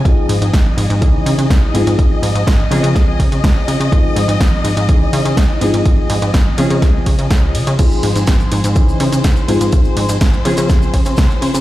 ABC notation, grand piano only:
X:1
M:4/4
L:1/8
Q:1/4=124
K:Ab
V:1 name="Grand piano"
[F,CEA]4 [_F,DEA]3 [=F,CEA]- | [F,CEA]3 [F,CDA]4- [F,CDA] | [F,CEA]4 [_F,DEA]3 [=F,CEA]- | [F,CEA]3 [F,CDA]4- [F,CDA] |
[F,CEA]4 [_F,DEA]3 [=F,CEA]- | [F,CEA]3 [F,CDA]4- [F,CDA] |]